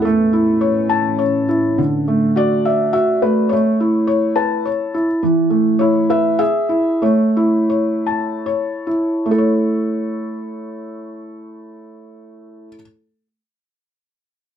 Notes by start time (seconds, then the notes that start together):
Already playing: E3
0.02 A2 A3 C#4 A4
0.33 E4
0.61 C#5
0.89 A5
1.19 C#5
1.49 E4
1.78 D3
2.08 A3
2.36 F#4 D5
2.65 D5 E5
2.93 F#4 E5
3.22 A3 B4
3.49 A3 C#5
3.80 E4
4.07 C#5
4.36 B4 A5
4.65 C#5
4.94 E4
5.23 E3
5.50 A3
5.79 E4 C#5
6.10 B4 E5
6.39 G#4 E5
6.69 E4
7.02 A3 C#5
7.37 E4
7.70 C#5
8.06 A5
8.46 C#5
8.87 E4
9.26 A3
9.31 E4 A4
9.38 C#5